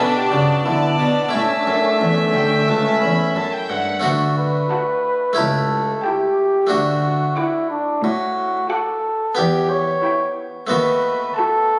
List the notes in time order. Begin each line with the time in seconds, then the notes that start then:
Already playing: B3 D4 A5
0.00 B2 D4 A4 D5
0.16 G4
0.32 C#3 F#4
0.65 D3 B3 E4 D5
0.99 B2 D4
1.29 A3 E4
1.33 A2 A3 C#4 E5 A5
1.42 D4
1.49 C#4
1.58 D4
1.65 F#2 C#4
1.73 D4
1.82 C#4
1.91 D4
1.99 E2 C#4 E5
2.07 D4
2.15 C#4
2.23 D4
2.31 D2 C#4 G5
2.40 D4
2.48 C#4
2.56 D4
2.64 C#4
2.68 C#2 A5
2.72 D4
2.80 C#4
3.02 E2 B5
3.36 F#2 A5
3.53 G5
3.69 G2 F#5
4.00 A3 D4 F#4
4.04 D2 F#4
4.38 B4
4.71 F#4 F#5 A5
5.33 A3 E4 G4
5.38 C#2 A4
6.04 E4 G4 G5 A5
6.67 A3 D4 F#4
6.71 D2 F#4
7.37 E4 F#4 F#5 D6
7.70 D4
8.04 A2 F#4
8.70 F#4 A4 F#5 D6
9.35 E2 B3 G4
9.71 C#5
10.04 E4 G5 B5
10.67 D#2 A3 B3 F#4 B4
10.71 D#2
11.37 F#4 A4 A5 B5